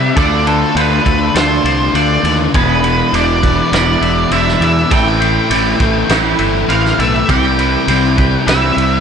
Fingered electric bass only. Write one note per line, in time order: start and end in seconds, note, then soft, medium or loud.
0.16 0.63 D2 medium
0.75 0.98 D2 medium
1.06 1.29 D2 medium
1.35 1.58 D2 medium
1.64 1.87 C2 medium
1.93 2.17 D2 medium
2.23 2.47 D#2 medium
2.54 3.01 E1 medium
3.13 3.59 E1 medium
3.72 3.95 E1 medium
4.01 4.25 E1 medium
4.31 4.54 E1 medium
4.60 4.84 E2 medium
4.91 5.38 A1 medium
5.50 5.73 A1 medium
5.80 6.03 A1 medium
6.09 6.33 A1 medium
6.39 6.62 G1 medium
6.68 6.92 A1 medium
6.98 7.22 B1 medium
7.29 7.76 C2 medium
7.87 8.34 C2 medium
8.47 8.70 C2 medium
8.77 9.00 C2 medium